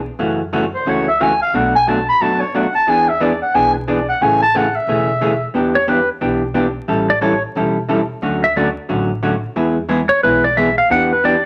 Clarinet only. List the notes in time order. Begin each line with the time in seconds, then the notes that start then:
0.75 C5
0.89 C#5
1.08 E5
1.22 G#5
1.42 F5
1.56 F#5
1.75 G#5
1.89 A5
2.09 B5
2.22 A5
2.40 C#5
2.56 F#5
2.75 A5
2.90 G#5
3.09 E5
3.22 D5
3.42 F#5
3.55 G#5
3.75 B4
3.90 D5
4.09 F#5
4.22 G#5
4.42 A5
4.57 F#5
4.75 E5